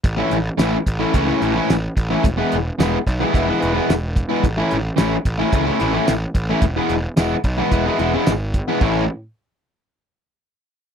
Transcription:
<<
  \new Staff \with { instrumentName = "Distorted electric guitar" } { \time 4/4 \key a \major \tempo 4 = 110 r16 <e a cis' e'>16 r8 <e a cis' e'>16 r8 <e a cis' e'>16 <e a cis' e'>16 <e a cis' e'>16 <e a cis' e'>16 <e a cis' e'>16 r8. <e a cis' e'>16 | r16 <e gis b e'>16 r8 <e gis b e'>16 r8 <e gis b e'>16 <e gis b e'>16 <e gis b e'>16 <e gis b e'>16 <e gis b e'>16 r8. <e gis b e'>16 | r16 <e a cis' e'>16 r8 <e a cis' e'>16 r8 <e a cis' e'>16 <e a cis' e'>16 <e a cis' e'>16 <e a cis' e'>16 <e a cis' e'>16 r8. <e a cis' e'>16 | r16 <e gis b e'>16 r8 <e gis b e'>16 r8 <e gis b e'>16 <e gis b e'>16 <e gis b e'>16 <e gis b e'>16 <e gis b e'>16 r8. <e gis b e'>16 |
<a, e a cis' e'>8 r2. r8 | }
  \new Staff \with { instrumentName = "Picked electric bass" } { \clef bass \time 4/4 \key a \major a,,8 a,,8 a,,8 a,,8 cis,8 a,,8 a,,8 a,,8 | e,,8 e,,8 e,,8 b,,8 e,,8 e,,8 e,,4 | a,,8 a,,8 a,,8 a,,8 cis,8 a,,8 a,,8 a,,8 | e,,8 e,,8 e,,8 b,,8 e,,8 e,,8 gis,,4 |
a,,8 r2. r8 | }
  \new DrumStaff \with { instrumentName = "Drums" } \drummode { \time 4/4 <hh bd>8 hh8 <hh sn tamb>8 <hh bd>8 <hh bd>8 hh8 <hh sn tamb>8 <hh bd>8 | <hh bd>8 hh8 <hh sn tamb>8 <hh bd>8 <hh bd>8 hh8 <hh sn tamb>8 <hh bd>8 | <hh bd>8 hh8 <hh sn tamb>8 <hh bd>8 <hh bd>8 hh8 <hh sn tamb>8 <hh bd>8 | <hh bd>8 hh8 <hh sn tamb>8 <hh bd>8 <hh bd>8 hh8 <hh sn tamb>8 <hh bd>8 |
<cymc bd>4 r4 r4 r4 | }
>>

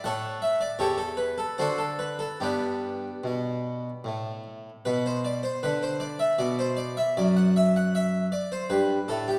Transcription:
<<
  \new Staff \with { instrumentName = "Harpsichord" } { \time 3/4 \key g \major \tempo 4 = 78 <a' cis'' fis''>8 e''16 d''16 <g' a' cis''>16 a'16 b'16 a'16 <fis' a' c''>16 a'16 b'16 a'16 | <b d' g'>2~ <b d' g'>8 r8 | b'16 c''16 d''16 c''16 b'16 c''16 d''16 e''16 d''16 c''16 d''16 e''16 | d''16 fis''16 e''16 fis''16 e''8 d''16 c''16 b'8 a'16 g'16 | }
  \new Staff \with { instrumentName = "Harpsichord" } { \clef bass \time 3/4 \key g \major a,4 e,4 d4 | g,4 b,4 a,4 | b,4 d4 b,4 | fis,2 g,8 a,8 | }
>>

